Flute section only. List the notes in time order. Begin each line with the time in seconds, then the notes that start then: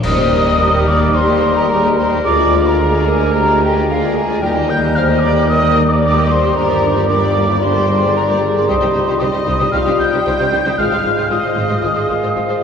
0.04 D#6
0.87 D6
1.15 C6
1.55 A#5
1.97 C6
2.23 D6
2.65 A#5
3.06 G#5
3.33 A#5
3.62 G5
3.89 F5
4.15 G#5
4.41 G5
4.68 G6
4.94 F6
5.20 D6
5.48 D#6
5.89 D6
6.29 C6
6.56 A#5
7.09 D6
7.62 C6
8.16 A#5
8.69 C6
9.21 D#6
9.73 F6
10.00 G6
10.78 F6
11.30 D#6